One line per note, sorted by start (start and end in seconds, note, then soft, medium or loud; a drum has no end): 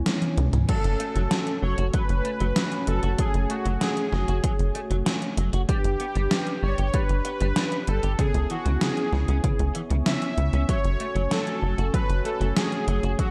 0.00 0.66 B3 medium
0.00 5.65 C#4 medium
0.00 0.66 E4 medium
0.00 5.65 C#5 medium
0.00 5.65 G#5 medium
0.06 0.21 G#3 medium
0.06 snare loud
0.06 closed hi-hat medium
0.06 high tom medium
0.22 0.28 E3 medium
0.22 closed hi-hat soft
0.22 high tom medium
0.37 0.50 C#2 medium
0.37 0.48 G#3 loud
0.37 closed hi-hat medium
0.37 mid tom medium
0.53 0.65 C#2 medium
0.53 0.68 E3 medium
0.53 closed hi-hat soft
0.53 mid tom medium
0.69 0.77 F#3 medium
0.69 5.65 A3 medium
0.69 5.65 F#4 medium
0.69 1.65 A4 loud
0.69 kick loud
0.69 closed hi-hat medium
0.69 crash medium
0.84 0.97 F#1 medium
0.84 closed hi-hat soft
1.00 1.05 A3 medium
1.00 closed hi-hat medium
1.16 1.28 F#1 medium
1.16 1.20 F#3 loud
1.16 closed hi-hat soft
1.31 1.39 F#3 medium
1.31 snare loud
1.31 closed hi-hat medium
1.47 closed hi-hat soft
1.63 1.75 F#1 medium
1.63 1.74 F#3 medium
1.63 1.77 C#5 loud
1.78 1.91 F#1 medium
1.78 1.86 F#4 medium
1.78 closed hi-hat soft
1.94 2.02 F#3 medium
1.94 2.90 B4 loud
1.94 kick loud
1.94 closed hi-hat loud
2.09 2.22 F#1 medium
2.09 closed hi-hat soft
2.25 2.30 A3 medium
2.25 closed hi-hat medium
2.40 2.53 F#1 medium
2.40 2.45 F#3 loud
2.40 closed hi-hat soft
2.56 2.64 F#3 medium
2.56 snare loud
2.56 closed hi-hat loud
2.72 closed hi-hat soft
2.87 3.00 F#1 medium
2.87 2.99 F#3 medium
2.87 3.20 A4 medium
2.87 closed hi-hat medium
3.03 3.16 F#1 medium
3.03 3.11 F#4 medium
3.03 closed hi-hat soft
3.19 3.27 F#3 medium
3.19 3.51 G#4 medium
3.19 kick loud
3.19 closed hi-hat medium
3.34 3.47 F#1 medium
3.34 closed hi-hat soft
3.50 3.55 A3 medium
3.50 3.82 F#4 medium
3.50 closed hi-hat medium
3.66 3.78 F#1 medium
3.66 3.70 F#3 loud
3.66 closed hi-hat soft
3.81 3.89 F#3 medium
3.81 4.71 G#4 medium
3.81 snare loud
3.81 closed hi-hat medium
3.97 closed hi-hat soft
4.13 4.25 F#1 medium
4.13 4.24 F#3 medium
4.13 snare soft
4.28 4.41 F#1 medium
4.28 4.36 F#4 medium
4.28 closed hi-hat soft
4.44 4.52 F#3 medium
4.44 kick loud
4.44 closed hi-hat loud
4.59 4.72 F#1 medium
4.59 closed hi-hat soft
4.75 4.80 A3 medium
4.75 closed hi-hat medium
4.91 5.03 F#1 medium
4.91 4.95 F#3 loud
4.91 closed hi-hat soft
5.06 5.14 F#3 medium
5.06 snare loud
5.06 closed hi-hat medium
5.22 closed hi-hat soft
5.37 5.50 F#1 medium
5.37 5.49 F#3 medium
5.37 closed hi-hat medium
5.53 5.66 F#1 medium
5.53 5.61 F#4 medium
5.53 closed hi-hat soft
5.68 5.77 G3 medium
5.68 8.16 D4 medium
5.68 6.65 G4 loud
5.68 8.16 G4 medium
5.68 8.16 B4 medium
5.68 kick loud
5.68 closed hi-hat medium
5.84 5.97 G1 medium
5.84 closed hi-hat soft
6.00 6.05 B3 medium
6.00 closed hi-hat medium
6.15 6.28 G1 medium
6.15 6.20 G3 loud
6.15 closed hi-hat soft
6.31 6.39 G3 medium
6.31 snare loud
6.31 closed hi-hat medium
6.47 closed hi-hat soft
6.62 6.75 G1 medium
6.62 6.74 G3 medium
6.62 6.86 C#5 loud
6.78 6.91 G1 medium
6.78 6.86 G4 medium
6.78 closed hi-hat soft
6.87 6.94 C#5 medium
6.94 7.02 G3 medium
6.94 7.90 B4 loud
6.94 kick loud
6.94 closed hi-hat medium
7.09 7.22 G1 medium
7.09 closed hi-hat soft
7.25 7.30 B3 medium
7.25 closed hi-hat medium
7.40 7.53 G1 medium
7.40 7.45 G3 medium
7.40 closed hi-hat soft
7.56 7.64 G3 medium
7.56 snare loud
7.56 closed hi-hat medium
7.72 closed hi-hat soft
7.87 8.00 G1 loud
7.87 7.99 G3 medium
7.87 8.20 A4 medium
7.87 closed hi-hat medium
8.03 8.16 G1 medium
8.03 8.11 G4 medium
8.03 closed hi-hat soft
8.19 8.27 C#3 medium
8.19 10.66 B3 medium
8.19 13.31 C#4 medium
8.19 10.66 E4 medium
8.19 8.51 G#4 medium
8.19 13.31 C#5 medium
8.19 13.31 G#5 medium
8.19 kick loud
8.19 closed hi-hat medium
8.34 8.47 C#2 medium
8.34 closed hi-hat soft
8.50 8.55 E3 medium
8.50 8.82 F#4 medium
8.50 closed hi-hat medium
8.66 8.78 C#2 medium
8.66 8.71 C#3 loud
8.66 closed hi-hat soft
8.81 8.89 C#3 medium
8.81 9.71 G#4 medium
8.81 snare loud
8.81 closed hi-hat medium
8.97 closed hi-hat soft
9.13 9.25 C#2 medium
9.13 9.24 C#3 medium
9.13 snare soft
9.28 9.41 C#2 medium
9.28 9.36 C#4 medium
9.28 closed hi-hat soft
9.44 9.52 C#3 medium
9.44 kick loud
9.44 closed hi-hat medium
9.59 9.72 C#2 medium
9.59 closed hi-hat soft
9.75 9.80 E3 medium
9.75 closed hi-hat medium
9.90 10.03 C#2 medium
9.90 9.95 C#3 loud
9.90 closed hi-hat soft
10.06 10.14 C#3 medium
10.06 10.71 E5 loud
10.06 snare loud
10.06 closed hi-hat medium
10.22 closed hi-hat soft
10.38 10.50 C#2 medium
10.38 10.49 C#3 medium
10.38 closed hi-hat medium
10.53 10.65 C#2 medium
10.53 10.61 C#4 medium
10.53 closed hi-hat soft
10.69 10.77 F#3 medium
10.69 13.31 A3 medium
10.69 13.31 F#4 medium
10.69 11.33 C#5 loud
10.69 kick loud
10.69 closed hi-hat medium
10.84 10.97 F#1 medium
10.84 closed hi-hat soft
11.00 11.05 A3 medium
11.00 closed hi-hat medium
11.15 11.28 F#1 medium
11.15 11.20 F#3 loud
11.15 closed hi-hat soft
11.31 11.39 F#3 medium
11.31 11.90 A4 loud
11.31 snare loud
11.31 closed hi-hat medium
11.47 closed hi-hat soft
11.63 11.75 F#1 medium
11.63 11.74 F#3 medium
11.78 11.91 F#1 medium
11.78 11.86 F#4 medium
11.78 closed hi-hat soft
11.94 12.02 F#3 medium
11.94 12.26 B4 loud
11.94 kick loud
11.94 closed hi-hat medium
12.09 12.22 F#1 medium
12.09 closed hi-hat soft
12.25 12.30 A3 medium
12.25 12.57 A4 medium
12.25 closed hi-hat medium
12.41 12.53 F#1 medium
12.41 12.45 F#3 loud
12.41 closed hi-hat soft
12.56 12.64 F#3 medium
12.56 13.15 G#4 medium
12.56 snare loud
12.56 closed hi-hat medium
12.72 closed hi-hat soft
12.87 13.00 F#1 loud
12.87 12.99 F#3 medium
12.87 closed hi-hat medium
13.03 13.16 F#1 medium
13.03 13.11 F#4 medium
13.03 closed hi-hat soft
13.19 13.27 F#3 medium
13.19 13.31 F#4 medium
13.19 kick loud
13.19 closed hi-hat medium